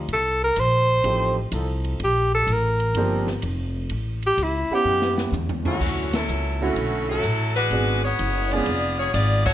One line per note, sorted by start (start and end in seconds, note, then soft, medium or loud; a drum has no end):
0.08 0.55 C2 medium
0.08 ride medium
0.13 0.42 A4 medium
0.44 0.61 A#4 medium
0.56 1.03 A#1 medium
0.56 1.38 C5 loud
0.56 hi-hat pedal soft
0.56 ride medium
1.04 1.50 A1 medium
1.04 1.34 F3 soft
1.04 1.34 A3 soft
1.04 1.34 C4 soft
1.04 1.34 D#4 soft
1.04 1.34 G4 medium
1.04 ride medium
1.52 1.98 C2 medium
1.52 2.01 F3 medium
1.52 2.00 C4 medium
1.52 2.01 D#4 medium
1.52 2.00 A4 medium
1.52 hi-hat pedal medium
1.52 ride medium
1.84 ride soft
2.00 2.46 A#1 medium
2.00 ride medium
2.04 2.32 G4 medium
2.35 2.54 A4 loud
2.47 2.93 A1 medium
2.47 hi-hat pedal soft
2.47 ride medium
2.53 3.30 A#4 medium
2.80 ride soft
2.95 3.41 G1 medium
2.95 3.25 F3 medium
2.95 3.25 A#3 medium
2.95 3.25 C4 medium
2.95 3.26 D4 medium
2.95 3.26 G4 medium
2.95 ride medium
3.27 snare soft
3.42 3.89 F1 medium
3.42 hi-hat pedal soft
3.42 ride medium
3.90 4.37 A1 medium
3.90 ride medium
4.22 ride soft
4.27 4.44 G4 loud
4.38 4.68 C#2 medium
4.38 hi-hat pedal medium
4.38 ride medium
4.43 4.73 E4 medium
4.70 5.31 B3 medium
4.70 5.31 C#4 medium
4.70 5.31 E4 medium
4.70 5.31 G4 medium
4.70 5.31 F#5 medium
4.70 muted upright bass stroke soft
4.74 5.17 G4 loud
4.85 5.31 F#2 medium
5.02 snare medium
5.18 snare medium
5.32 5.79 E2 medium
5.32 floor tom medium
5.32 hi-hat pedal medium
5.49 floor tom medium
5.64 6.25 D3 medium
5.64 6.11 E3 medium
5.64 6.25 F#3 medium
5.64 6.11 A3 medium
5.64 6.25 C#4 medium
5.64 6.11 C#4 medium
5.64 6.25 E4 medium
5.64 6.10 F#4 medium
5.64 floor tom medium
5.81 6.27 D2 medium
5.81 kick medium
5.81 crash medium
6.13 6.59 F#3 medium
6.13 6.58 C#4 medium
6.13 6.59 E4 medium
6.13 6.59 A4 medium
6.13 snare medium
6.13 ride medium
6.28 6.75 C#2 medium
6.28 hi-hat pedal medium
6.61 7.21 D3 medium
6.61 7.10 E3 medium
6.61 7.21 A3 medium
6.61 7.09 A3 medium
6.61 7.21 C#4 medium
6.61 7.08 C#4 medium
6.61 7.21 E4 medium
6.61 7.21 F#4 medium
6.61 7.09 F#4 medium
6.76 7.22 B1 medium
6.76 ride medium
7.09 7.53 F#3 medium
7.09 7.53 C#4 medium
7.09 7.53 E4 medium
7.09 7.53 A4 medium
7.23 7.70 A1 medium
7.23 hi-hat pedal soft
7.23 ride medium
7.56 8.01 G#3 medium
7.56 8.01 D4 medium
7.56 8.01 F#4 medium
7.56 8.00 B4 loud
7.56 ride soft
7.71 8.17 G#1 medium
7.71 8.01 G#3 medium
7.71 8.01 B3 medium
7.71 8.01 D4 soft
7.71 8.01 F#4 medium
7.71 8.01 G#4 medium
7.71 ride medium
8.04 8.51 B3 medium
8.04 8.51 F#4 medium
8.04 8.50 G#4 medium
8.04 8.52 C#5 medium
8.19 8.65 F#1 medium
8.19 hi-hat pedal soft
8.19 ride medium
8.51 8.65 G#3 medium
8.51 8.97 B3 medium
8.51 8.66 B3 medium
8.51 8.66 C#4 medium
8.51 8.66 D4 medium
8.51 8.97 F4 medium
8.51 8.97 G#4 medium
8.51 8.66 G#4 medium
8.51 8.99 D5 loud
8.51 ride soft
8.66 9.13 F1 medium
8.66 ride medium
8.98 9.11 B3 medium
8.98 9.12 F4 medium
8.98 9.12 G#4 medium
8.98 9.13 C#5 medium
9.13 9.54 G#1 medium
9.13 9.44 B3 medium
9.13 9.44 F4 medium
9.13 9.44 G#4 medium
9.13 9.44 D5 loud
9.13 hi-hat pedal medium
9.13 ride medium
9.45 9.54 A3 medium
9.45 9.54 E4 medium
9.45 9.54 F#4 medium
9.45 9.54 C#5 loud
9.45 kick medium
9.45 crash medium